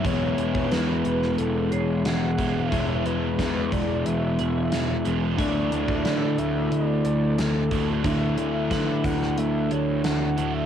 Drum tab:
HH |x-x-x-x-x-x-x-x-|x-x-x-x-x-x-x-x-|x-x-x-x-x-x-x-x-|x-x-x-x-x-x-x-x-|
SD |----o--o----o---|----o-------o---|----o-------o---|----o--o----o---|
BD |o--o----------o-|o---o-o---------|o--o----------o-|o---o-o---------|